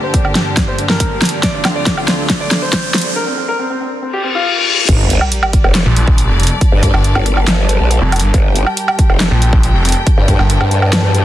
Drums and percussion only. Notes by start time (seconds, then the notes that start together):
0.14 kick, closed hi-hat
0.25 low woodblock
0.35 snare, closed hi-hat
0.57 kick, snare, closed hi-hat
0.79 closed hi-hat
0.89 snare
1.00 kick, closed hi-hat
1.22 snare, closed hi-hat
1.25 closed hi-hat
1.29 closed hi-hat
1.43 kick, snare, closed hi-hat
1.65 snare, closed hi-hat, low woodblock
1.86 kick, snare, closed hi-hat
1.97 low woodblock
2.08 snare, closed hi-hat
2.30 kick, snare, closed hi-hat
2.51 snare, closed hi-hat
2.73 kick, snare, closed hi-hat
2.94 snare, closed hi-hat
2.98 closed hi-hat
3.02 closed hi-hat
4.89 kick, closed hi-hat, crash
5.10 closed hi-hat
5.21 low woodblock
5.32 closed hi-hat
5.43 low woodblock
5.53 kick, closed hi-hat
5.64 low woodblock
5.75 snare, clap, closed hi-hat
5.96 closed hi-hat
6.07 kick
6.18 closed hi-hat
6.40 closed hi-hat
6.43 closed hi-hat
6.47 closed hi-hat
6.61 kick, closed hi-hat
6.83 kick, closed hi-hat
6.94 low woodblock
7.04 closed hi-hat
7.15 low woodblock
7.26 closed hi-hat
7.37 low woodblock
7.48 snare, clap, closed hi-hat
7.69 closed hi-hat
7.91 closed hi-hat
8.12 closed hi-hat, low woodblock
8.16 closed hi-hat
8.20 closed hi-hat
8.34 kick, closed hi-hat
8.56 closed hi-hat
8.67 low woodblock
8.77 closed hi-hat
8.88 low woodblock
8.99 kick, closed hi-hat
9.10 low woodblock
9.20 snare, clap, closed hi-hat
9.42 closed hi-hat
9.53 kick
9.63 closed hi-hat
9.85 closed hi-hat
9.89 closed hi-hat
9.92 closed hi-hat
10.07 kick, closed hi-hat
10.28 kick, closed hi-hat
10.39 low woodblock
10.50 closed hi-hat
10.61 low woodblock
10.71 closed hi-hat
10.82 low woodblock
10.93 snare, clap, closed hi-hat
11.14 closed hi-hat